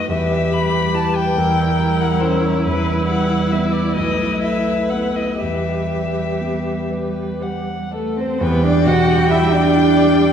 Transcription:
Already playing: F#2 A3 D#4 B4
0.09 E2 G3 G4 B4 E5
0.51 G3 B5
0.94 E4 B4 A5
1.16 G5
1.36 E2 G3 E4 A#4
1.79 G3
2.01 F#5
2.20 C#4 A#4 C5
2.44 C#5
2.64 E2 G3 B4
3.07 G3 F#5
3.52 B3 B4 E5
3.72 D5
3.95 B1 A3 B4 D#5
4.42 A3 E5
4.90 B3 B4 F#5
5.15 D#5
5.39 E2 G3 G4 B4 E5
5.92 G3
6.41 B3
6.91 B4
7.41 G4 F#5
7.92 A3 A4 B4
8.17 C4 C5
8.40 E2 G3 B3 B4 G5
8.64 D4 D5
8.85 B2 F#4 F#5
9.31 G3 E4 E5
9.52 D4 D5
9.77 E4
10.21 G4

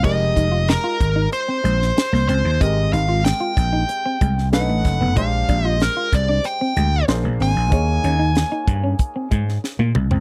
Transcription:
0.03 F1 G#3 D#4 G4 A#4 D#5, kick, crash
0.21 muted clean electric guitar stroke
0.36 F1 D#4, kick, closed hi-hat
0.52 F4
0.68 A#4, snare, closed hi-hat
0.84 F4
1.00 G#1, muted clean electric guitar stroke, kick, closed hi-hat
1.16 D#4
1.32 C5, muted clean electric guitar stroke, closed hi-hat
1.48 C4
1.64 A#1 G#3, closed hi-hat
1.82 snare
1.97 muted clean electric guitar stroke, snare, closed hi-hat
2.13 C2 A#3, snare
2.28 C#2 C4 C5, closed hi-hat
2.45 D#2
2.60 G#1 G#3 C4 G4 A#4 D#5, kick, closed hi-hat
2.77 muted clean electric guitar stroke
2.93 G#1 D#4 F5, closed hi-hat
3.09 F4
3.25 G5, snare, closed hi-hat
3.40 F4
3.57 A#1, muted clean electric guitar stroke, kick, closed hi-hat
3.73 D#4
3.89 muted clean electric guitar stroke, closed hi-hat
4.06 C4
4.21 C2 G#3, kick, closed hi-hat
4.38 snare
4.53 B1 A3 C#4 D4 B4 F#5, snare, closed hi-hat
4.60 D#4
4.69 A1 A3
4.85 F#1, muted clean electric guitar stroke, kick, snare, closed hi-hat
5.01 F1 B3
5.16 A#1 G#3 D4 G4 C5 F5, kick, closed hi-hat
5.33 muted clean electric guitar stroke
5.49 A#1 D4, kick, closed hi-hat
5.65 F4 D#5
5.80 A#4, snare, closed hi-hat
5.97 F4
6.12 C2 D5, muted clean electric guitar stroke, kick, closed hi-hat
6.29 D4
6.44 G5, muted clean electric guitar stroke, closed hi-hat
6.61 C4
6.76 D2 G#3, closed hi-hat
7.08 A#1 A#3 D4 G#4 C5, muted clean electric guitar stroke, snare, closed hi-hat
7.24 A#1 A#3
7.40 G#1 C4 G#5, snare, open hi-hat
7.56 A#1
7.70 D#2 A#3 D#4 G#4 C#5, kick, closed hi-hat
7.88 muted clean electric guitar stroke
8.04 D#2 C#4, closed hi-hat
8.19 D#4
8.35 snare, closed hi-hat
8.52 D#4
8.67 G2, muted clean electric guitar stroke, kick, closed hi-hat
8.84 C#4
8.99 muted clean electric guitar stroke, kick, closed hi-hat
9.16 C4
9.31 G#2 G#3, kick, closed hi-hat
9.49 snare
9.64 snare
9.79 A#2 A#3, high tom
9.95 C2, muted clean electric guitar stroke, mid tom
10.11 C#2 C4, floor tom

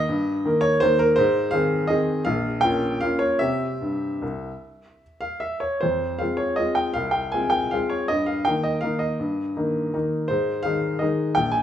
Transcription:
Already playing: D#5
0.09 G2
0.45 D#3 A#3 A#4
0.61 C#5
0.80 D#3 A#3 A#4 C5
0.99 A#4
1.16 G#2 C5
1.51 D#3 C4 G#4 F5
1.87 D#3 C4 G#4 D#5
2.25 A#1 F5
2.61 A#3 C#4 F4 G5
3.01 A#3 C#4 F4 F5
3.19 C#5
3.39 C3 C4 G4 E5
3.82 G2
4.22 C2
5.21 F5
5.40 E5
5.60 C#5
5.81 F2 C5
6.19 G#3 C4 F4 F5
6.37 C#5
6.56 G#3 C4 F4 D#5
6.75 G5
6.94 C2 F5
7.11 G5
7.32 G#3 C4 F4 G#5
7.50 G5
7.71 G#3 C4 F4 F5
7.90 C#5
8.08 G2 D#5
8.26 F5
8.45 D#3 A#3 D#4 G5
8.63 D#5
8.81 D#3 A#3 D#4 F5
8.99 D#5
9.20 G2
9.57 D#3 A#3 D#4
9.94 D#3 A#3 D#4
10.28 G#2 C5
10.63 D#3 G#3 D#4 F5
10.99 D#3 G#3 D#4 D#5
11.35 A#1 G5
11.52 G#5

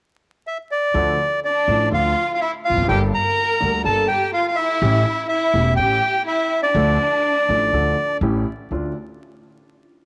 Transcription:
0.47 E5
0.71 D5
0.94 D2 D3 F3 A3 D4 A4
1.44 D4 D5
1.68 A1 A2 F3 A3 D4 A4
1.91 D2 D3 F3 A3 D4 F4 A4 F5
2.34 F4 F5
2.41 E4 E5
2.65 F4 F5
2.70 E1 E2
2.76 F1 F2
2.82 F#1 F#2
2.88 G1 G2 G3 A#3 D4 G4 A4 G5
3.14 A#4 A#5
3.60 D2 D3 G3 A#3 D4 A4
3.84 G1 G2 G3 A#3 D4 A4 A5
4.08 G4 G5
4.34 F4 F5
4.48 F4 F5
4.56 E4 E5
4.82 A1 A2 E3 A3 C#4 G4
5.28 E4 E5
5.53 E1 E2 E3 A3 C#4 G4
5.77 A1 A2 E3 A3 C#4 G4 G5
6.26 E4 E5
6.62 D4 D5
6.75 D2 D3 F3 A3 D4 A4
7.49 A1 A2 F3 A3 D4 A4
7.72 D2 D3 F3 A3 D4 A4
8.21 A1 A2 E3 A3 C#4 G4
8.71 D2 A3 D4 F4

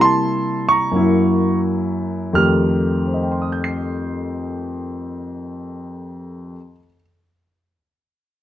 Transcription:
Already playing: C3 G3 A#3 E4
0.01 A5 C6
0.69 A#5 C#6
0.91 F#2 F#3 A#3
0.96 E4
2.33 F2 D#3 A3 G4 F6
3.07 C5
3.14 D#5
3.22 G5
3.32 C6
3.42 D#6
3.52 G6
3.64 C7

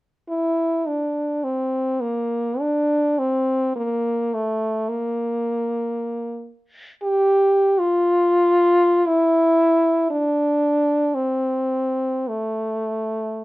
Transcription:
0.29 E4
0.87 D4
1.44 C4
2.01 A#3
2.60 D4
3.19 C4
3.76 A#3
4.34 A3
4.89 A#3
7.03 G4
7.80 F4
9.07 E4
10.11 D4
11.14 C4
12.29 A3

